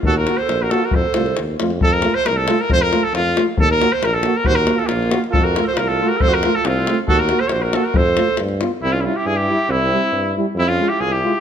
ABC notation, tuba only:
X:1
M:2/4
L:1/8
Q:1/4=137
K:none
V:1 name="Tuba" clef=bass
_E,,2 _B,,,2 | F,, C,, _E,, F,, | F,,2 C,,2 | F,,2 F,,2 |
_E,,2 _B,,,2 | _E,,2 _B,,,2 | F,,2 C,,2 | F,,2 C,,2 |
_E,,2 _B,,,2 | F,,2 G,,2 | C,,2 G,,2 | C,,2 G,,2 |
F,,2 C,,2 |]